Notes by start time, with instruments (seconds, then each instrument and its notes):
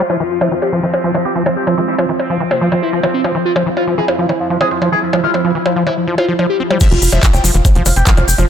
Already playing: synth texture F3 F4
0.10 acid bass F3, synth texture C4, analog synth lead E4, percussion blips
0.20 acid bass E3, analog synth lead F3
0.31 analog synth lead F3
0.41 acid bass F3, analog synth lead E4, percussion blips
0.52 acid bass E3, analog synth lead F3
0.62 analog synth lead G4, percussion blips
0.73 acid bass F3, analog synth lead F3
0.83 acid bass E3, analog synth lead F3
0.94 percussion blips
1.04 acid bass F3, analog synth lead F3
1.15 acid bass E3, analog synth lead F3, percussion blips
1.25 synth arpeggio sound C4, analog synth lead G4
1.36 acid bass F3, analog synth lead F3, synth arpeggio sound C4
1.46 acid bass E3, analog synth lead F3, percussion blips
1.57 analog synth lead G4
1.67 acid bass F3, analog synth lead F3, percussion blips
1.77 acid bass E3, analog synth lead F3, synth arpeggio sound G#3
1.88 synth arpeggio sound G#3, analog synth lead E4
1.98 acid bass F3, analog synth lead F3, percussion blips
2.09 acid bass E3, analog synth lead F3
2.19 percussion blips
2.30 acid bass F3, analog synth lead F3
2.40 acid bass E3, analog synth lead F3
2.51 synth arpeggio sound A#3, analog synth lead C4, percussion blips
2.61 acid bass F3, analog synth lead F3
2.72 acid bass E3, analog synth lead F3, percussion blips
2.82 analog synth lead E4
2.93 synth arpeggio sound F3, acid bass F3, analog synth lead F3
3.03 acid bass E3, synth arpeggio sound F3, analog synth lead F3, percussion blips
3.14 analog synth lead C4
3.24 acid bass F3, analog synth lead F3, percussion blips
3.35 acid bass E3, analog synth lead F3
3.45 synth texture E4, analog synth lead F4
3.56 acid bass F3, analog synth lead F3, percussion blips
3.66 acid bass E3, analog synth lead F3
3.77 analog synth lead F4, percussion blips
3.87 acid bass F3, analog synth lead F3
3.98 acid bass E3, analog synth lead G#4
4.08 analog synth lead F3, percussion blips
4.19 acid bass F3, analog synth lead F3
4.29 acid bass E3, percussion blips
4.40 analog synth lead F3
4.50 acid bass F3, analog synth lead F3
4.61 acid bass E3, synth arpeggio sound C4, analog synth lead G#4, percussion blips
4.71 analog synth lead F3, synth arpeggio sound C4
4.82 acid bass F3, analog synth lead F3, percussion blips
4.92 acid bass E3, analog synth lead G#4
5.03 analog synth lead F3
5.13 acid bass F3, analog synth lead F3, synth arpeggio sound G#3, percussion blips
5.24 acid bass E3, synth arpeggio sound G#3, analog synth lead F4
5.34 analog synth lead F3, synth arpeggio sound C4, percussion blips
5.45 acid bass F3, analog synth lead F3
5.55 acid bass E3
5.66 analog synth lead F3, percussion blips
5.76 acid bass F3, analog synth lead F3
5.87 acid bass E3, analog synth lead E4, percussion blips
5.97 analog synth lead F3
6.08 acid bass F3, analog synth lead F3
6.18 analog synth lead F4, percussion blips
6.29 acid bass F3, analog synth lead F3
6.39 acid bass F3, analog synth lead F3, percussion blips
6.50 analog synth lead G4
6.60 analog synth lead F3, acid bass C4
6.71 analog synth lead F3, acid bass G3, percussion blips
6.80 acid bass F3, analog synth lead E5, kick, closed hi-hat, crash, percussion blips, cabasa
6.91 analog synth bass F1, acid bass E3, analog synth lead F4, closed hi-hat
7.02 analog synth bass F1, analog synth lead F4, open hi-hat, cabasa
7.12 analog synth bass F1, acid bass F3, analog synth lead E5, closed hi-hat, percussion blips, cabasa
7.23 acid bass E3, analog synth lead F4, kick, clap, closed hi-hat, cabasa
7.33 analog synth bass F1, analog synth lead G5, closed hi-hat, percussion blips, cabasa
7.44 analog synth bass F1, acid bass F3, analog synth lead F4, open hi-hat, cabasa
7.54 analog synth bass F1, acid bass E3, analog synth lead F4, closed hi-hat, cabasa
7.65 kick, closed hi-hat, percussion blips, cabasa
7.75 analog synth bass F1, acid bass F3, analog synth lead F4, closed hi-hat
7.86 analog synth bass F1, acid bass E3, analog synth lead F4, open hi-hat, percussion blips, cabasa
7.96 analog synth bass F1, synth arpeggio sound C4, analog synth lead G5, closed hi-hat, cabasa
8.06 acid bass F3, synth arpeggio sound C4, analog synth lead F4, kick, clap, closed hi-hat, cabasa
8.17 analog synth bass F1, acid bass E3, analog synth lead F4, closed hi-hat, percussion blips
8.28 analog synth bass F1, analog synth lead G5, open hi-hat, cabasa
8.38 analog synth bass F1, acid bass F3, analog synth lead F4, closed hi-hat, percussion blips, cabasa